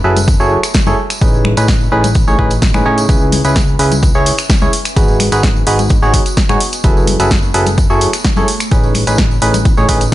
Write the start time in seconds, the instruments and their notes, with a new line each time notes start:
Already playing: ambient pad A3 B3 E5 G#5
0.04 analog synth bass F#1, fm electric piano F#3 E4 G#4 A4 B4
0.17 closed hi-hat, tambourine, high conga
0.28 kick, closed hi-hat, tambourine
0.40 analog synth bass F#1, fm electric piano F#3 E4 G#4 A4 C#5, tambourine
0.63 finger snap, closed hi-hat, tambourine
0.74 kick, snare, closed hi-hat, tambourine
0.86 analog synth bass F#1, fm electric piano A3 E4 G#4 A4 C#5, tambourine, high conga
0.98 ambient pad C#4 B4
1.10 finger snap, closed hi-hat, tambourine
1.21 analog synth bass A1, fm electric piano A2 C#4 D#4 G#4 B4, ambient pad D#5, kick, closed hi-hat, tambourine
1.34 tambourine
1.45 finger snap, high conga
1.57 analog synth bass A1, fm electric piano A2 C#4 D#4 G#4 B4, closed hi-hat, tambourine
1.68 kick, snare, closed hi-hat, tambourine
1.81 tambourine
1.92 analog synth bass A1, fm electric piano A2 C#4 D#4 G#4 B4
2.04 closed hi-hat, tambourine, high conga
2.15 kick, closed hi-hat, tambourine
2.28 analog synth bass A1, fm electric piano A2 C#4 D#4 G#4 C#5, tambourine
2.39 analog synth bass A1, fm electric piano A2 C#4 D#4 G#4 B4, kick
2.50 closed hi-hat, tambourine
2.62 kick, snare, closed hi-hat, tambourine
2.74 analog synth bass A1, fm electric piano A2 C#4 D#4 G#4 B4, finger snap, tambourine, high conga
2.86 analog synth bass A2, fm electric piano C#3 C#4 D#4 G#4 C#5
2.98 closed hi-hat, tambourine
3.09 analog synth bass C#2, fm electric piano C#3 C#4 E4 G#4 B4, kick, closed hi-hat, tambourine
3.17 ambient pad E5
3.21 tambourine
3.32 open hi-hat, high conga
3.45 analog synth bass C#2, fm electric piano C#3 C#4 E4 G#4 B4, closed hi-hat, tambourine
3.56 kick, snare, closed hi-hat, tambourine
3.68 tambourine
3.79 analog synth bass C#2, fm electric piano C#3 C#4 E4 G#4 B4, open hi-hat
3.92 closed hi-hat, tambourine, high conga
4.03 kick, closed hi-hat, tambourine
4.14 analog synth bass C#2, fm electric piano C#3 C#4 E4 G#4 C#5, tambourine
4.26 open hi-hat
4.38 finger snap, closed hi-hat, tambourine
4.50 kick, snare, closed hi-hat, tambourine
4.61 analog synth bass C#2, fm electric piano C#4 E4 G#4 C#5, tambourine, high conga
4.73 ambient pad B3, open hi-hat
4.79 ambient pad F#4
4.85 finger snap, closed hi-hat, tambourine
4.96 analog synth bass G#1, fm electric piano G#3 D#4 F#4 G#4 B4, kick, closed hi-hat, tambourine
5.08 tambourine
5.20 ambient pad D#5, finger snap, open hi-hat, high conga
5.32 analog synth bass G#1, fm electric piano G#3 D#4 F#4 G#4 B4, closed hi-hat, tambourine
5.43 kick, snare, closed hi-hat, tambourine
5.56 tambourine
5.67 analog synth bass G#1, fm electric piano G#3 D#4 F#4 G#4 B4, open hi-hat
5.79 closed hi-hat, tambourine, high conga
5.89 kick, closed hi-hat, tambourine
6.03 analog synth bass G#1, fm electric piano G#3 D#4 F#4 G#4 C#5, tambourine
6.14 kick, open hi-hat
6.26 closed hi-hat, tambourine
6.37 kick, snare, closed hi-hat, tambourine
6.49 analog synth bass G#2, fm electric piano D#4 F#4 G#4 C#5, finger snap, tambourine, high conga
6.60 open hi-hat
6.73 ambient pad A3, closed hi-hat, tambourine
6.84 analog synth bass F#1, fm electric piano F#3 E4 G#4 A4 B4, kick, closed hi-hat, tambourine
6.97 tambourine
7.07 ambient pad E5, open hi-hat, high conga
7.20 analog synth bass F#1, fm electric piano F#3 E4 G#4 A4 B4, closed hi-hat, tambourine
7.31 kick, snare, closed hi-hat, tambourine
7.42 tambourine
7.54 analog synth bass F#1, fm electric piano F#3 E4 G#4 A4 B4, open hi-hat
7.66 closed hi-hat, tambourine, high conga
7.78 kick, closed hi-hat, tambourine
7.90 analog synth bass F#1, fm electric piano F#3 E4 G#4 A4 C#5, tambourine
8.01 open hi-hat
8.13 finger snap, closed hi-hat, tambourine
8.25 kick, snare, closed hi-hat
8.37 analog synth bass F#2, fm electric piano A3 E4 G#4 A4 C#5, tambourine, high conga
8.48 ambient pad C#4, open hi-hat
8.60 ambient pad B4, finger snap, closed hi-hat, tambourine
8.71 analog synth bass A1, fm electric piano A2 C#4 D#4 G#4 B4, kick, closed hi-hat, tambourine
8.83 tambourine
8.88 ambient pad D#5
8.95 finger snap, open hi-hat, high conga
9.07 analog synth bass A1, fm electric piano A2 C#4 D#4 G#4 B4, closed hi-hat, tambourine
9.18 kick, snare, closed hi-hat, tambourine
9.31 tambourine
9.42 analog synth bass A1, fm electric piano A2 C#4 D#4 G#4 B4, open hi-hat
9.54 closed hi-hat, tambourine, high conga
9.65 kick, closed hi-hat, tambourine
9.77 analog synth bass A1, fm electric piano A2 C#4 D#4 G#4 C#5, tambourine
9.89 analog synth bass A1, fm electric piano A2 C#4 D#4 G#4 B4, kick, open hi-hat
10.01 closed hi-hat, tambourine